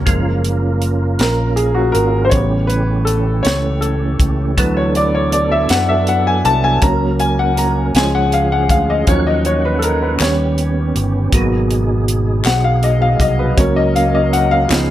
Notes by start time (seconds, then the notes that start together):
0.06 F#1 F3 G#3 A#3 C#4 F4 A#4, kick, closed hi-hat
0.44 closed hi-hat
0.82 closed hi-hat
1.19 A#1 A#4, snare, closed hi-hat
1.56 G#4, closed hi-hat
1.75 F#4
1.92 G#1 A#4, closed hi-hat
2.25 C5
2.29 A1 C#3 E3 G3 A3 B3 G4 C#5, kick, closed hi-hat
2.67 B4, closed hi-hat
3.05 A4, closed hi-hat
3.43 C#2 C#5, snare, closed hi-hat
3.81 A4, closed hi-hat
4.20 C#2, kick, closed hi-hat
4.57 D2 E3 F#3 B3 D4 A4 B4, kick, closed hi-hat
4.77 C#5
4.95 D5, closed hi-hat
5.15 C#5
5.32 D5, closed hi-hat
5.52 E5
5.69 F#2 F#5, snare, closed hi-hat
5.89 E5
6.07 F#5, closed hi-hat
6.27 G#5
6.45 C2 A5, closed hi-hat
6.64 G#5
6.82 C#2 F#3 A#3 C#4 A#4 A#5, kick, closed hi-hat
7.20 G#5, closed hi-hat
7.39 F#5
7.57 A#5, closed hi-hat
7.95 C#2 F3 G#3 C#4 G#4 G#5, snare, closed hi-hat
8.15 F#5
8.32 F5, closed hi-hat
8.52 F#5
8.69 D2 F5, kick, closed hi-hat
8.90 D#5
9.07 D#2 D#3 F3 F#3 A#3 C#4 C#5 F#5, kick, closed hi-hat
9.27 D#5
9.45 C#5, closed hi-hat
9.65 B4
9.79 A4, closed hi-hat
9.84 A#4
10.03 B4
10.20 D#2 G3 B3 C#4 G4 C#5, snare, clap, closed hi-hat
10.58 closed hi-hat
10.95 G1, closed hi-hat
11.32 G#1 B2 F#3 A#3 B3 D#4 G#4, kick, closed hi-hat
11.71 closed hi-hat
12.08 closed hi-hat
12.45 B1 F#5, snare, clap, closed hi-hat
12.64 F5
12.83 D#5, closed hi-hat
13.02 F5
13.20 C2 D#5, kick, closed hi-hat
13.39 B4
13.57 C#2 F#3 A#3 C#4 A#4 C#5, kick, closed hi-hat
13.76 D#5
13.96 F5, closed hi-hat
14.15 D#5
14.33 F#5, closed hi-hat
14.51 F5
14.68 C#2 F3 B3 D#4 G#4, clap, closed hi-hat
14.73 snare